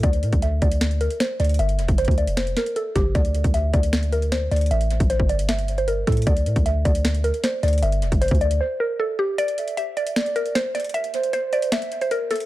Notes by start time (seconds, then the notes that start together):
0.03 D2 D5, kick, closed hi-hat
0.13 closed hi-hat
0.23 A2, closed hi-hat
0.33 D2, kick, closed hi-hat
0.42 E5, closed hi-hat
0.62 D2 D5, kick, closed hi-hat
0.72 closed hi-hat
0.81 snare, closed hi-hat
0.91 closed hi-hat
1.01 A#4, closed hi-hat
1.10 closed hi-hat
1.20 C5, snare, closed hi-hat
1.40 D2 D5, closed hi-hat
1.45 closed hi-hat
1.49 closed hi-hat
1.54 closed hi-hat
1.59 G1 E5, closed hi-hat
1.69 closed hi-hat
1.79 F1, closed hi-hat
1.88 G1, kick, closed hi-hat
1.98 C5, closed hi-hat
2.05 D2, kick, closed hi-hat
2.11 closed hi-hat
2.18 D5, closed hi-hat
2.27 F1, closed hi-hat
2.37 C5, snare, closed hi-hat
2.47 closed hi-hat
2.57 A#4, snare, closed hi-hat
2.66 closed hi-hat
2.76 A4, closed hi-hat
2.96 G1 G4, kick, closed hi-hat
3.15 D2 D5, kick, closed hi-hat
3.25 closed hi-hat
3.35 closed hi-hat
3.44 D2, kick, closed hi-hat
3.54 E5, closed hi-hat
3.73 D2 D5, kick, closed hi-hat
3.83 closed hi-hat
3.93 snare, closed hi-hat
4.03 closed hi-hat
4.12 A#4, closed hi-hat
4.22 closed hi-hat
4.32 C5, snare, closed hi-hat
4.51 D2 D5, closed hi-hat
4.56 closed hi-hat
4.61 closed hi-hat
4.66 closed hi-hat
4.71 A1 E5, closed hi-hat
4.81 closed hi-hat
4.90 closed hi-hat
5.00 A1, kick, closed hi-hat
5.10 C5, closed hi-hat
5.20 G1, kick
5.29 D5, closed hi-hat
5.39 closed hi-hat
5.49 E5, snare, closed hi-hat
5.58 closed hi-hat
5.68 closed hi-hat
5.78 C5, closed hi-hat
5.88 A#4, closed hi-hat
6.07 A2 A4, kick, closed hi-hat
6.12 closed hi-hat
6.17 closed hi-hat
6.22 closed hi-hat
6.27 D2 D5, kick, closed hi-hat
6.37 closed hi-hat
6.46 A2, closed hi-hat
6.56 D2, kick, closed hi-hat
6.66 E5, closed hi-hat
6.85 D2 D5, kick, closed hi-hat
6.95 closed hi-hat
7.05 snare, closed hi-hat
7.14 closed hi-hat
7.24 A#4, closed hi-hat
7.34 closed hi-hat
7.44 C5, snare, closed hi-hat
7.63 D2 D5, closed hi-hat
7.68 closed hi-hat
7.73 closed hi-hat
7.78 closed hi-hat
7.82 G1 E5, closed hi-hat
7.92 closed hi-hat
8.02 F1, closed hi-hat
8.12 G1, kick, closed hi-hat
8.21 C5, closed hi-hat
8.28 D2, kick, closed hi-hat
8.35 closed hi-hat
8.41 D5, closed hi-hat
8.51 closed hi-hat
8.61 C5
8.80 A#4
8.99 A4
9.19 G4
9.38 D5, closed hi-hat
9.48 closed hi-hat
9.58 E5, closed hi-hat
9.68 closed hi-hat
9.77 E5, closed hi-hat
9.97 D5, closed hi-hat
10.07 closed hi-hat
10.16 D5, snare, closed hi-hat
10.26 closed hi-hat
10.36 A#4, closed hi-hat
10.46 closed hi-hat
10.55 C5, snare, closed hi-hat
10.75 D5, closed hi-hat
10.80 closed hi-hat
10.84 closed hi-hat
10.89 closed hi-hat
10.94 E5, closed hi-hat
11.04 closed hi-hat
11.14 C5, closed hi-hat
11.23 closed hi-hat
11.33 C5, closed hi-hat
11.53 D5, closed hi-hat
11.62 closed hi-hat
11.72 E5, snare, closed hi-hat
11.82 closed hi-hat
11.92 closed hi-hat
12.01 C5, closed hi-hat
12.11 A#4, closed hi-hat
12.31 A4, closed hi-hat
12.36 closed hi-hat
12.40 closed hi-hat